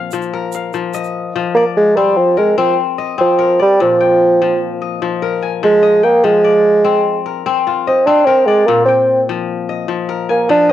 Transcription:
Already playing: kora A#2 F3 F5
0.11 kora F3, shaker
0.22 shaker
0.34 kora A#4
0.52 kora F5, shaker
0.73 kora F3, shaker
0.94 kora D#5, shaker
1.04 shaker
1.36 kora F3
1.55 bassoon A#3, kora D5
1.77 bassoon G#3
1.96 bassoon G3, kora C4
2.17 bassoon F3
2.37 bassoon G#3, kora A#4
2.58 bassoon F3, kora C4
2.98 kora D#5
3.18 bassoon F3, kora C4
3.39 kora A#4
3.59 bassoon G3, kora D5
3.80 kora A#2, bassoon F3
4.01 kora G5
4.42 kora F3
4.82 kora D#5
5.02 kora F3
5.22 kora A#4
5.42 kora G#5
5.63 kora F3, bassoon G#3
5.83 kora D#5
6.03 bassoon A#3, kora G5
6.24 kora F3, bassoon G#3
6.44 kora D5
6.84 kora C4
7.26 kora A#4
7.46 kora C4
7.67 kora F4
7.87 bassoon C4, kora D#5
8.06 kora C4, bassoon D4
8.26 bassoon C4, kora A#4
8.46 bassoon G#3, kora D5
8.66 kora A#2, bassoon A#3
8.85 bassoon C4, kora G5
9.29 kora F3
9.69 kora D#5
9.88 kora F3
10.09 kora A#4
10.29 bassoon A#3, kora G#5
10.49 kora F3, bassoon D4
10.69 kora D#5

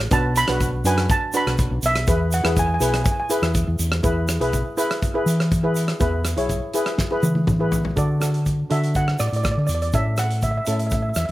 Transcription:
0.11 fingered electric bass B1, steel pan D4 F#4 B4 A5, kick, closed hi-hat, shaker
0.36 steel pan B5, closed hi-hat, shaker
0.48 fingered electric bass B1, steel pan D4 F#4 B4, cross-stick, closed hi-hat, shaker
0.61 kick, closed hi-hat, shaker
0.84 fingered electric bass F#2, steel pan D4 F#4 B4 G#5, closed hi-hat, shaker
0.98 cross-stick, closed hi-hat
1.10 steel pan A5, kick, closed hi-hat, shaker
1.33 steel pan D4 F#4 B4 B5, closed hi-hat, shaker
1.46 fingered electric bass B1, cross-stick, closed hi-hat, shaker
1.58 kick, closed hi-hat, shaker
1.71 fingered electric bass B1
1.83 fingered electric bass B1, steel pan E5, closed hi-hat, shaker
1.95 cross-stick, closed hi-hat, shaker
2.07 fingered electric bass E2, steel pan E4 G#4 B4, kick, closed hi-hat, shaker
2.32 steel pan F#5, closed hi-hat, shaker
2.43 fingered electric bass E2, steel pan E4 G#4 B4, cross-stick, closed hi-hat, shaker
2.57 steel pan G#5, kick, closed hi-hat, shaker
2.67 steel pan G#5
2.74 steel pan G#5
2.80 fingered electric bass B1, steel pan E4 G#4 B4 G#5, closed hi-hat, shaker
2.89 steel pan G#5
2.94 steel pan G#5, cross-stick, closed hi-hat
3.04 steel pan G#5, kick, closed hi-hat, shaker
3.12 steel pan G#5
3.20 steel pan G#5
3.30 steel pan E4 G#4 B4, closed hi-hat, shaker
3.42 fingered electric bass E2, cross-stick, closed hi-hat, shaker
3.55 kick, closed hi-hat, shaker
3.67 fingered electric bass E2
3.79 fingered electric bass E2, closed hi-hat, shaker
3.92 cross-stick, closed hi-hat, shaker
4.03 fingered electric bass E2, steel pan E4 G#4 B4, kick, closed hi-hat, shaker
4.28 cross-stick, closed hi-hat, shaker
4.40 fingered electric bass B1, steel pan E4 G#4 B4, closed hi-hat, shaker
4.53 kick, closed hi-hat, shaker
4.77 steel pan E4 G#4 B4, closed hi-hat, shaker
4.91 cross-stick, closed hi-hat
5.02 kick, closed hi-hat, shaker
5.14 steel pan E4 G#4 B4
5.26 fingered electric bass E3, closed hi-hat, shaker
5.40 cross-stick, closed hi-hat
5.52 kick, closed hi-hat, shaker
5.63 steel pan E4 G#4 B4
5.75 closed hi-hat, shaker
5.88 cross-stick, closed hi-hat
6.00 fingered electric bass E2, steel pan E4 G#4 B4, kick, closed hi-hat, shaker
6.25 cross-stick, closed hi-hat, shaker
6.37 fingered electric bass B1, steel pan E4 G#4 C#5, closed hi-hat, shaker
6.49 kick, closed hi-hat, shaker
6.74 steel pan E4 G#4 B4, closed hi-hat, shaker
6.86 cross-stick, closed hi-hat
6.98 kick, snare, shaker
7.11 steel pan E4 G#4 B4
7.23 fingered electric bass E3, high tom, shaker
7.35 high tom
7.47 kick, mid tom, shaker
7.59 steel pan E4 G#4 B4
7.72 floor tom, shaker
7.85 floor tom
7.96 fingered electric bass D3, steel pan D4 F#4 A4 D5, kick, closed hi-hat, shaker
8.20 steel pan D4 F#4 A4, cross-stick, closed hi-hat, shaker
8.34 closed hi-hat
8.46 kick, closed hi-hat, shaker
8.70 fingered electric bass D3, steel pan D4 F#4 A4 E5, closed hi-hat
8.83 closed hi-hat, shaker
8.95 steel pan F#5, kick, closed hi-hat, shaker
9.08 cross-stick
9.19 fingered electric bass A2, steel pan D5, cross-stick, closed hi-hat, shaker
9.27 steel pan D5
9.32 fingered electric bass A2, closed hi-hat
9.36 steel pan D5
9.44 steel pan D5, kick, cross-stick, closed hi-hat, shaker
9.52 steel pan D5
9.57 fingered electric bass D3, steel pan D5
9.67 fingered electric bass E2, steel pan D5, closed hi-hat, shaker
9.75 steel pan D5
9.81 steel pan D5, closed hi-hat, shaker
9.93 fingered electric bass A2, steel pan C#4 E4 A4 E5, kick, closed hi-hat, shaker
10.17 steel pan F#5, cross-stick, closed hi-hat, shaker
10.31 closed hi-hat
10.42 steel pan E5, kick, closed hi-hat, shaker
10.51 steel pan E5
10.57 steel pan E5
10.65 fingered electric bass A2, steel pan C#4 E4 A4 E5, closed hi-hat, shaker
10.72 steel pan E5
10.79 steel pan E5, closed hi-hat, shaker
10.87 steel pan E5, shaker
10.92 steel pan E5, kick, closed hi-hat
11.02 steel pan E5
11.09 steel pan E5
11.15 fingered electric bass E2, steel pan E5, cross-stick, closed hi-hat, shaker
11.26 steel pan E5

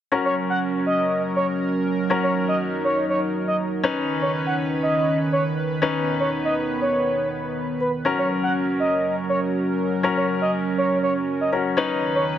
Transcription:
0.12 analog synth pad F#3 C#4 A#4, grand piano C#4 F#4 A#4
0.25 analog synth lead C#5
0.50 analog synth lead F#5
0.86 analog synth lead D#5
1.36 analog synth lead C#5
2.10 grand piano C#4 F#4 A#4, analog synth pad D#4
2.23 analog synth lead C#5
2.48 analog synth lead D#5
2.85 analog synth lead C#5
3.09 analog synth lead C#5
3.48 analog synth lead D#5
3.83 analog synth pad D#3 C#4 B4, grand piano C#4 D#4 B4
4.22 analog synth lead C#5
4.46 analog synth lead F#5
4.83 analog synth lead D#5
5.33 analog synth lead C#5
5.82 analog synth pad B3, grand piano C#4 D#4 B4
6.20 analog synth lead C#5
6.45 analog synth lead D#5
6.81 analog synth lead C#5
7.81 analog synth lead B4
8.05 analog synth pad F#3 C#4 A#4, grand piano C#4 F#4 A#4
8.18 analog synth lead C#5
8.43 analog synth lead F#5
8.80 analog synth lead D#5
9.29 analog synth lead C#5
10.03 grand piano C#4 F#4 A#4
10.17 analog synth lead C#5
10.42 analog synth lead D#5
10.78 analog synth lead C#5
11.03 analog synth lead C#5
11.41 analog synth lead D#5
11.52 grand piano C#4 F#4 A#4
11.77 analog synth pad D#3 B4, grand piano C#4 D#4 B4
12.15 analog synth lead C#5

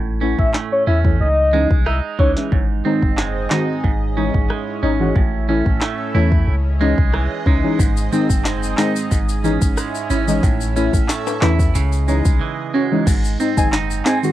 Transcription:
Already playing: sub bass A1, clean electric guitar A2 C#4
0.21 synth stab E3 A3 C#4 E4, clean electric guitar C#4
0.39 sub bass A1, soft synth lead E5, kick
0.54 clean electric guitar A3, snare, clap
0.72 soft synth lead C#5
0.87 sub bass E2, synth stab C#4 E4, clean electric guitar C#4, soft synth lead E5
1.04 synth stab E3 A3 C#4 E4, kick
1.20 sub bass C#2, soft synth lead D#5
1.53 synth stab E3 G#3 C#4 D#4, clean electric guitar G#3
1.71 sub bass C2, kick
1.86 clean electric guitar D#4, soft synth lead E5, cross-stick
2.19 sub bass C#2, clean electric guitar E3, synth stab C#4 D#4, soft synth lead C#5, kick
2.36 synth stab E3 G#3 C#4 E4, snare
2.52 sub bass G#1, clean electric guitar G#2, analog synth pad C4 D#4 G#4 D#5, kick
2.85 synth stab D#3 G#3 C4 D#4, clean electric guitar C4
3.02 sub bass F#1, kick
3.18 clean electric guitar G#3, snare, clap
3.50 synth stab D#3 G#3 C4 F#4, clean electric guitar D#4, snare, clap
3.84 sub bass G#1, clean electric guitar G#2, analog synth pad C#4 E4, kick
4.16 synth stab E3 G#3 C#4 D#4, clean electric guitar C#4
4.34 sub bass G#1, kick
4.50 clean electric guitar G#3, cross-stick
4.82 sub bass G#1, synth stab C#4 D#4, clean electric guitar C#4
5.00 synth stab E3 G#3 C#4 F#4
5.16 sub bass A1, clean electric guitar A2, analog synth pad C#4 A4 E5, kick
5.48 synth stab E3 A3 C#4 E4, clean electric guitar C#4
5.66 sub bass A1, kick
5.81 clean electric guitar A3, snare, clap
6.14 sub bass E2, synth stab E3 A3 C#4 E4, clean electric guitar E4
6.32 kick
6.48 sub bass C#2, analog synth pad G#4 D#5
6.80 synth stab E3 G#3 C#4 D#4, clean electric guitar G#3
6.98 sub bass C2, kick
7.14 clean electric guitar E3, cross-stick
7.46 sub bass C#2, clean electric guitar G#3, synth stab C#4 D#4, kick
7.63 synth stab E3 G#3 C#4 D#4
7.79 sub bass G#1, clean electric guitar G#2, analog synth pad C4 D#4 G#4, kick, shaker
7.97 shaker
8.12 synth stab D#3 G#3 C4 D#4, clean electric guitar C4, shaker
8.30 sub bass F#1, kick, shaker
8.45 clean electric guitar G#3, snare, clap, shaker
8.63 shaker
8.77 synth stab D#3 G#3 C4 D#4, clean electric guitar D#4, snare, clap, shaker
8.96 shaker
9.11 sub bass G#1, clean electric guitar G#2, analog synth pad C#4 E4, kick, shaker
9.29 shaker
9.43 synth stab E3 G#3 C#4 D#4, clean electric guitar C#4, shaker
9.62 sub bass G#1, kick, shaker
9.77 clean electric guitar G#3, cross-stick, shaker
9.95 shaker
10.10 sub bass G#1, synth stab C#4 E4, clean electric guitar C#4, shaker
10.27 synth stab E3 G#3 C#4 D#4, shaker
10.43 sub bass A1, clean electric guitar A2, analog synth pad A4 E5, kick, closed hi-hat, shaker
10.61 shaker
10.75 synth stab E3 A3 C#4 E4, clean electric guitar C#4, shaker
10.93 sub bass A1, kick, shaker
11.09 clean electric guitar A3, snare, clap, closed hi-hat, shaker
11.27 high timbale, shaker
11.41 sub bass E2, synth stab E3 A3 C#4 E4, clean electric guitar E4, snare, clap, high timbale, shaker
11.59 kick, shaker
11.75 sub bass C#2, clean electric guitar C#3, analog synth pad G#4 D#5, closed hi-hat, shaker
11.92 shaker
12.08 synth stab E3 G#3 C#4 D#4, clean electric guitar G#3, shaker
12.25 sub bass C2, kick, shaker
12.41 clean electric guitar E3
12.74 clean electric guitar G#3, synth stab C#4 F#4
12.91 synth stab E3 G#3 C#4 D#4
13.07 sub bass G#1, clean electric guitar G#2, kick, closed hi-hat, crash, shaker
13.24 shaker
13.39 synth stab C4 D#4, clean electric guitar C4, shaker
13.57 sub bass F#1, synth stab D#3 G#3 C4 D#4, soft synth lead G#5, kick, shaker
13.72 clean electric guitar D#4, snare, clap, closed hi-hat, shaker
13.91 shaker
14.05 synth stab C4 D#4, clean electric guitar C4, soft synth lead G#5, snare, clap, shaker
14.23 synth stab D#3 G#3 C4 F#4, shaker

